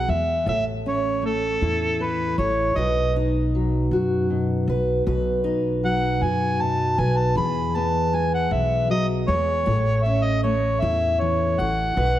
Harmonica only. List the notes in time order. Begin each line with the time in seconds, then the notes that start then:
Already playing: F#5
0.10 E5
0.48 E5
0.88 C#5
1.25 A4
2.02 B4
2.38 C#5
2.77 D#5
5.85 F#5
6.22 G#5
6.61 A5
7.00 G#5
7.17 A5
7.37 B5
7.76 A5
8.15 G#5
8.34 F#5
8.52 E5
8.91 D#5
9.27 C#5
10.03 E5
10.23 D#5
10.43 C#5
10.80 E5
11.20 C#5
11.59 F#5